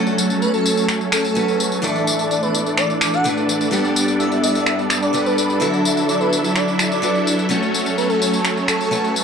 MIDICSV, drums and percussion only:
0, 0, Header, 1, 2, 480
1, 0, Start_track
1, 0, Tempo, 472441
1, 1859, Time_signature, 4, 2, 24, 8
1, 9387, End_track
2, 0, Start_track
2, 0, Title_t, "Drums"
2, 67, Note_on_c, 9, 54, 21
2, 169, Note_off_c, 9, 54, 0
2, 187, Note_on_c, 9, 54, 70
2, 288, Note_off_c, 9, 54, 0
2, 306, Note_on_c, 9, 54, 31
2, 408, Note_off_c, 9, 54, 0
2, 426, Note_on_c, 9, 54, 39
2, 528, Note_off_c, 9, 54, 0
2, 546, Note_on_c, 9, 54, 20
2, 648, Note_off_c, 9, 54, 0
2, 666, Note_on_c, 9, 54, 71
2, 767, Note_off_c, 9, 54, 0
2, 786, Note_on_c, 9, 54, 33
2, 888, Note_off_c, 9, 54, 0
2, 899, Note_on_c, 9, 26, 70
2, 906, Note_on_c, 9, 54, 41
2, 1001, Note_off_c, 9, 26, 0
2, 1008, Note_off_c, 9, 54, 0
2, 1027, Note_on_c, 9, 54, 21
2, 1128, Note_off_c, 9, 54, 0
2, 1139, Note_on_c, 9, 26, 72
2, 1146, Note_on_c, 9, 54, 73
2, 1241, Note_off_c, 9, 26, 0
2, 1248, Note_off_c, 9, 54, 0
2, 1266, Note_on_c, 9, 54, 31
2, 1368, Note_off_c, 9, 54, 0
2, 1386, Note_on_c, 9, 54, 40
2, 1488, Note_off_c, 9, 54, 0
2, 1507, Note_on_c, 9, 54, 20
2, 1608, Note_off_c, 9, 54, 0
2, 1626, Note_on_c, 9, 54, 72
2, 1728, Note_off_c, 9, 54, 0
2, 1746, Note_on_c, 9, 54, 32
2, 1847, Note_off_c, 9, 54, 0
2, 1866, Note_on_c, 9, 54, 43
2, 1968, Note_off_c, 9, 54, 0
2, 1986, Note_on_c, 9, 54, 21
2, 2088, Note_off_c, 9, 54, 0
2, 2106, Note_on_c, 9, 54, 72
2, 2208, Note_off_c, 9, 54, 0
2, 2226, Note_on_c, 9, 54, 31
2, 2327, Note_off_c, 9, 54, 0
2, 2346, Note_on_c, 9, 54, 41
2, 2447, Note_off_c, 9, 54, 0
2, 2466, Note_on_c, 9, 54, 21
2, 2568, Note_off_c, 9, 54, 0
2, 2586, Note_on_c, 9, 54, 73
2, 2688, Note_off_c, 9, 54, 0
2, 2706, Note_on_c, 9, 54, 33
2, 2808, Note_off_c, 9, 54, 0
2, 2819, Note_on_c, 9, 26, 66
2, 2826, Note_on_c, 9, 54, 41
2, 2921, Note_off_c, 9, 26, 0
2, 2928, Note_off_c, 9, 54, 0
2, 2946, Note_on_c, 9, 54, 21
2, 3048, Note_off_c, 9, 54, 0
2, 3059, Note_on_c, 9, 26, 69
2, 3066, Note_on_c, 9, 54, 76
2, 3161, Note_off_c, 9, 26, 0
2, 3168, Note_off_c, 9, 54, 0
2, 3186, Note_on_c, 9, 54, 31
2, 3288, Note_off_c, 9, 54, 0
2, 3306, Note_on_c, 9, 54, 41
2, 3408, Note_off_c, 9, 54, 0
2, 3427, Note_on_c, 9, 54, 20
2, 3528, Note_off_c, 9, 54, 0
2, 3546, Note_on_c, 9, 54, 74
2, 3648, Note_off_c, 9, 54, 0
2, 3666, Note_on_c, 9, 54, 31
2, 3768, Note_off_c, 9, 54, 0
2, 3786, Note_on_c, 9, 54, 43
2, 3888, Note_off_c, 9, 54, 0
2, 3906, Note_on_c, 9, 54, 21
2, 4008, Note_off_c, 9, 54, 0
2, 4026, Note_on_c, 9, 54, 73
2, 4128, Note_off_c, 9, 54, 0
2, 4146, Note_on_c, 9, 54, 31
2, 4248, Note_off_c, 9, 54, 0
2, 4266, Note_on_c, 9, 54, 40
2, 4367, Note_off_c, 9, 54, 0
2, 4386, Note_on_c, 9, 54, 21
2, 4488, Note_off_c, 9, 54, 0
2, 4506, Note_on_c, 9, 54, 71
2, 4608, Note_off_c, 9, 54, 0
2, 4626, Note_on_c, 9, 54, 31
2, 4728, Note_off_c, 9, 54, 0
2, 4739, Note_on_c, 9, 26, 66
2, 4746, Note_on_c, 9, 54, 40
2, 4841, Note_off_c, 9, 26, 0
2, 4848, Note_off_c, 9, 54, 0
2, 4866, Note_on_c, 9, 54, 20
2, 4968, Note_off_c, 9, 54, 0
2, 4979, Note_on_c, 9, 26, 67
2, 4986, Note_on_c, 9, 54, 72
2, 5080, Note_off_c, 9, 26, 0
2, 5087, Note_off_c, 9, 54, 0
2, 5106, Note_on_c, 9, 54, 30
2, 5208, Note_off_c, 9, 54, 0
2, 5226, Note_on_c, 9, 54, 41
2, 5327, Note_off_c, 9, 54, 0
2, 5346, Note_on_c, 9, 54, 20
2, 5448, Note_off_c, 9, 54, 0
2, 5466, Note_on_c, 9, 54, 74
2, 5568, Note_off_c, 9, 54, 0
2, 5586, Note_on_c, 9, 54, 31
2, 5688, Note_off_c, 9, 54, 0
2, 5707, Note_on_c, 9, 54, 42
2, 5809, Note_off_c, 9, 54, 0
2, 5827, Note_on_c, 9, 54, 20
2, 5928, Note_off_c, 9, 54, 0
2, 5947, Note_on_c, 9, 54, 67
2, 6048, Note_off_c, 9, 54, 0
2, 6067, Note_on_c, 9, 54, 30
2, 6168, Note_off_c, 9, 54, 0
2, 6187, Note_on_c, 9, 54, 39
2, 6289, Note_off_c, 9, 54, 0
2, 6307, Note_on_c, 9, 54, 20
2, 6408, Note_off_c, 9, 54, 0
2, 6427, Note_on_c, 9, 54, 67
2, 6529, Note_off_c, 9, 54, 0
2, 6547, Note_on_c, 9, 54, 31
2, 6649, Note_off_c, 9, 54, 0
2, 6660, Note_on_c, 9, 26, 67
2, 6667, Note_on_c, 9, 54, 40
2, 6762, Note_off_c, 9, 26, 0
2, 6769, Note_off_c, 9, 54, 0
2, 6788, Note_on_c, 9, 54, 20
2, 6889, Note_off_c, 9, 54, 0
2, 6900, Note_on_c, 9, 26, 69
2, 6907, Note_on_c, 9, 54, 72
2, 7002, Note_off_c, 9, 26, 0
2, 7009, Note_off_c, 9, 54, 0
2, 7028, Note_on_c, 9, 54, 30
2, 7129, Note_off_c, 9, 54, 0
2, 7147, Note_on_c, 9, 54, 39
2, 7249, Note_off_c, 9, 54, 0
2, 7267, Note_on_c, 9, 54, 19
2, 7369, Note_off_c, 9, 54, 0
2, 7387, Note_on_c, 9, 54, 69
2, 7488, Note_off_c, 9, 54, 0
2, 7507, Note_on_c, 9, 54, 29
2, 7609, Note_off_c, 9, 54, 0
2, 7627, Note_on_c, 9, 54, 39
2, 7729, Note_off_c, 9, 54, 0
2, 7747, Note_on_c, 9, 54, 20
2, 7849, Note_off_c, 9, 54, 0
2, 7867, Note_on_c, 9, 54, 66
2, 7969, Note_off_c, 9, 54, 0
2, 7987, Note_on_c, 9, 54, 30
2, 8089, Note_off_c, 9, 54, 0
2, 8107, Note_on_c, 9, 54, 38
2, 8209, Note_off_c, 9, 54, 0
2, 8228, Note_on_c, 9, 54, 19
2, 8329, Note_off_c, 9, 54, 0
2, 8348, Note_on_c, 9, 54, 69
2, 8450, Note_off_c, 9, 54, 0
2, 8468, Note_on_c, 9, 54, 29
2, 8569, Note_off_c, 9, 54, 0
2, 8581, Note_on_c, 9, 26, 69
2, 8588, Note_on_c, 9, 54, 38
2, 8682, Note_off_c, 9, 26, 0
2, 8690, Note_off_c, 9, 54, 0
2, 8708, Note_on_c, 9, 54, 20
2, 8810, Note_off_c, 9, 54, 0
2, 8821, Note_on_c, 9, 26, 72
2, 8828, Note_on_c, 9, 54, 67
2, 8922, Note_off_c, 9, 26, 0
2, 8929, Note_off_c, 9, 54, 0
2, 8948, Note_on_c, 9, 54, 28
2, 9049, Note_off_c, 9, 54, 0
2, 9068, Note_on_c, 9, 54, 39
2, 9170, Note_off_c, 9, 54, 0
2, 9187, Note_on_c, 9, 54, 19
2, 9289, Note_off_c, 9, 54, 0
2, 9307, Note_on_c, 9, 54, 67
2, 9387, Note_off_c, 9, 54, 0
2, 9387, End_track
0, 0, End_of_file